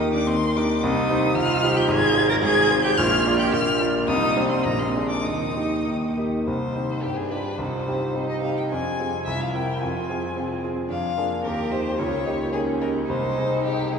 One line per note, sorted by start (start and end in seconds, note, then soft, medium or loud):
0.00 0.27 D#2 medium
0.00 0.27 D#3 medium
0.00 0.10 D#4 medium
0.00 0.25 D#4 medium
0.00 0.25 G4 medium
0.00 0.25 A#4 medium
0.13 0.27 D4 medium
0.13 0.28 D6 loud
0.27 0.54 D#2 medium
0.27 0.54 D#3 medium
0.27 0.35 C4 loud
0.27 0.58 C6 loud
0.55 0.82 D4 medium
0.55 0.80 D#4 medium
0.55 0.80 G4 medium
0.55 0.81 A#4 medium
0.55 0.84 D6 loud
0.82 1.09 C2 loud
0.82 1.09 C3 medium
0.82 1.35 D#4 loud
0.82 1.37 D#6 loud
1.10 1.34 D#4 medium
1.10 1.34 G4 medium
1.10 1.34 C5 medium
1.35 1.62 C2 medium
1.35 1.62 C3 medium
1.35 1.77 F4 loud
1.35 1.78 F6 loud
1.63 1.87 D#4 medium
1.63 1.87 G4 medium
1.63 1.87 C5 medium
1.76 1.91 G4 medium
1.76 1.92 G6 loud
1.88 2.15 G#1 medium
1.88 2.15 G#2 loud
1.88 2.29 G#4 loud
1.88 2.29 G#6 loud
2.15 2.40 C4 medium
2.15 2.41 F4 medium
2.15 2.41 C5 medium
2.29 2.35 A#4 loud
2.29 2.35 A#6 loud
2.42 2.70 G#1 medium
2.42 2.70 G#2 medium
2.42 2.83 G#4 loud
2.42 2.82 G#6 loud
2.71 2.96 C4 medium
2.71 2.96 F4 medium
2.71 2.96 C5 medium
2.83 2.97 G4 loud
2.83 2.99 G6 loud
2.97 3.26 A#1 medium
2.97 3.25 A#2 medium
2.97 3.40 F4 loud
2.97 3.38 F6 loud
3.26 3.51 A#3 medium
3.26 3.51 F4 medium
3.26 3.52 D5 medium
3.39 3.55 G4 loud
3.39 3.51 G6 loud
3.52 3.80 A#1 medium
3.52 3.80 A#2 medium
3.52 3.81 F4 loud
3.52 3.80 F6 loud
3.80 4.05 A#3 medium
3.80 4.06 F4 medium
3.80 4.06 D5 medium
4.07 4.36 C2 medium
4.07 4.36 C3 medium
4.07 4.51 D#4 loud
4.07 4.48 D#6 loud
4.36 4.63 G3 medium
4.36 4.63 C4 medium
4.36 4.63 C5 medium
4.50 4.67 C4 medium
4.50 4.67 C6 medium
4.65 4.95 A#1 medium
4.65 4.95 A#2 medium
4.65 4.81 A#3 medium
4.65 4.81 A#5 loud
4.79 5.11 C4 medium
4.79 5.09 C6 medium
4.95 5.23 A#3 medium
4.95 5.23 D4 medium
4.95 5.24 G#4 medium
5.09 5.25 D4 medium
5.09 5.27 D6 medium
5.25 5.56 D#2 medium
5.25 5.56 D#3 medium
5.25 6.16 D#4 medium
5.25 6.18 D#6 medium
5.55 5.84 A#3 soft
5.55 5.84 D#4 soft
5.55 5.84 G4 medium
5.87 6.17 D#2 medium
5.87 6.17 D#3 medium
6.18 6.44 A#3 soft
6.18 6.45 D#4 soft
6.18 6.45 G4 medium
6.46 6.75 C2 medium
6.46 7.04 C5 medium
6.75 7.01 C4 soft
6.75 7.01 D#4 soft
6.75 7.01 G4 soft
7.02 7.31 G2 medium
7.02 7.61 D4 medium
7.02 7.18 G4 medium
7.16 7.32 G#4 medium
7.31 7.57 D4 soft
7.31 7.57 F4 soft
7.31 7.57 G4 medium
7.31 7.59 B4 medium
7.58 7.86 C2 medium
7.58 7.86 D#4 medium
7.58 8.28 C5 medium
7.86 8.13 C4 soft
7.86 8.13 D#4 soft
7.86 7.94 F4 medium
7.86 8.13 G4 soft
8.15 8.40 C4 soft
8.15 8.73 D#4 medium
8.15 8.40 D#4 soft
8.15 8.41 G4 medium
8.29 8.41 D#5 medium
8.42 8.68 C4 soft
8.42 8.68 D#4 soft
8.42 8.69 G4 medium
8.42 8.56 F5 medium
8.57 8.63 G5 medium
8.70 8.99 F2 medium
8.70 8.99 D4 medium
8.70 9.25 G#5 medium
8.99 9.07 C4 medium
8.99 9.24 C4 soft
8.99 9.24 F4 soft
8.99 9.24 G#4 medium
9.26 9.53 C2 medium
9.26 9.83 E4 medium
9.26 9.42 E5 medium
9.41 9.54 F5 medium
9.55 9.79 C4 soft
9.55 9.79 E4 soft
9.55 9.79 A#4 medium
9.55 9.83 G5 medium
9.81 10.09 F2 medium
9.81 10.35 F4 medium
9.81 10.63 G#5 medium
10.10 10.34 C4 soft
10.10 10.34 F4 soft
10.10 10.34 G#4 medium
10.36 10.88 C4 medium
10.36 10.61 C4 medium
10.36 10.61 F4 medium
10.36 10.61 G#4 medium
10.64 10.88 C4 medium
10.64 10.88 F4 medium
10.64 10.88 G#4 medium
10.89 11.16 F2 medium
10.89 11.15 D4 medium
10.89 11.40 F5 medium
11.15 11.41 A#3 medium
11.15 11.42 D4 medium
11.15 11.23 F4 medium
11.15 11.42 G#4 medium
11.44 11.71 D#2 medium
11.44 11.97 G4 medium
11.44 11.73 A#4 medium
11.71 11.96 A#3 medium
11.71 11.96 D#4 medium
11.71 11.96 G4 medium
11.71 11.99 C5 medium
11.98 12.25 C#2 medium
11.98 12.24 F4 medium
11.98 12.52 C#5 medium
12.25 12.50 A#3 medium
12.25 12.33 D#4 medium
12.25 12.51 D#4 medium
12.25 12.51 G4 medium
12.51 12.78 A#3 medium
12.51 13.07 C#4 medium
12.51 12.78 D#4 medium
12.51 12.78 G4 medium
12.51 12.60 G#4 loud
12.81 13.06 A#3 medium
12.81 13.06 D#4 medium
12.81 13.06 G4 medium
12.81 12.89 A#4 medium
13.06 13.36 C2 medium
13.06 13.99 D#4 medium
13.06 13.63 C5 medium
13.37 13.62 C4 medium
13.37 13.62 D#4 medium
13.37 13.63 G#4 medium
13.64 13.91 C4 soft
13.64 13.91 D#4 soft
13.64 13.94 G4 medium
13.64 13.91 G#4 soft
13.93 13.99 C4 soft
13.93 13.99 D#4 soft
13.93 13.99 G#4 medium
13.93 13.99 G#4 soft